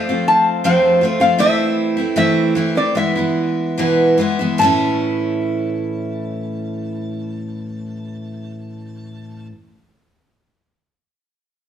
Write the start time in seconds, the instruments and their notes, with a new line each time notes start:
Already playing: resonator guitar played with a steel bar E5
0.05 steel-string acoustic guitar F4, resonator guitar played with a steel bar D5
0.10 steel-string acoustic guitar F3 A3 C4
0.28 resonator guitar played with a steel bar A5
0.64 steel-string acoustic guitar F2 C3 F3 A3 C4 F4, resonator guitar played with a steel bar G5
1.01 steel-string acoustic guitar F3 A3 C4 F4
1.20 steel-string acoustic guitar F3 A3 C4 F4, resonator guitar played with a steel bar F5
1.38 steel-string acoustic guitar E3 A3 C4 E4, resonator guitar played with a steel bar E5
1.97 steel-string acoustic guitar A3 C4 E4
2.16 steel-string acoustic guitar E3 A3 C4 E4, resonator guitar played with a steel bar E5
2.55 steel-string acoustic guitar E3 A3 C4 E4
2.75 steel-string acoustic guitar A3 C4 E4, resonator guitar played with a steel bar D5
2.95 steel-string acoustic guitar E3 G#3 B3 E4, resonator guitar played with a steel bar E5
3.16 steel-string acoustic guitar E3 G#3 B3 E4
3.78 steel-string acoustic guitar E2 B2 E3 G#3 B3 E4
4.18 steel-string acoustic guitar E3 G#3 B3 E4
4.39 steel-string acoustic guitar E3 G#3 B3 E4
4.58 steel-string acoustic guitar A2 E3 A3, resonator guitar played with a steel bar A5
4.63 steel-string acoustic guitar C#4 E4